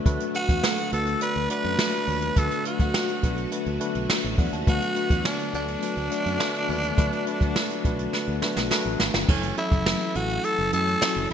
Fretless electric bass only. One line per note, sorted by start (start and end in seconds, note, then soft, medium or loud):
0.06 0.17 D2 loud
0.49 0.60 E2 medium
0.93 1.14 D2 medium
1.36 1.47 D2 medium
1.65 1.75 F#2 medium
2.08 2.29 D#2 medium
2.37 2.47 D2 loud
2.80 2.90 D2 medium
3.23 3.45 B1 medium
3.66 3.77 D2 medium
3.95 4.06 B1 medium
4.24 4.35 A1 medium
4.38 4.49 E2 medium
4.53 4.64 D#2 medium
4.67 4.78 D2 loud
5.10 5.21 E2 medium
5.54 5.75 D2 medium
5.97 6.08 D2 medium
6.26 6.37 F#2 medium
6.69 6.91 D#2 medium
6.98 7.09 D2 loud
7.41 7.52 D2 medium
7.85 8.06 B1 medium
8.28 8.39 D2 medium
8.57 8.67 B1 medium
8.86 8.96 A1 medium
9.00 9.11 G#1 medium
9.14 9.25 G1 medium
9.29 9.50 F#1 loud
9.72 9.93 F#1 medium
10.16 10.37 A1 medium
10.59 10.69 F#1 medium
10.73 10.95 F#2 medium
11.16 11.27 F#1 medium